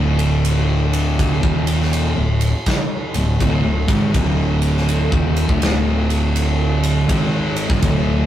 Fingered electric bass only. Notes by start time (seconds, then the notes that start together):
Already playing: D1
1.43 D#1
2.17 D1
3.15 D1
3.41 D1
3.64 D1
3.89 G#1
4.15 D1
5.12 D#1
5.49 D1
7.10 G#1
7.70 G1
7.84 D1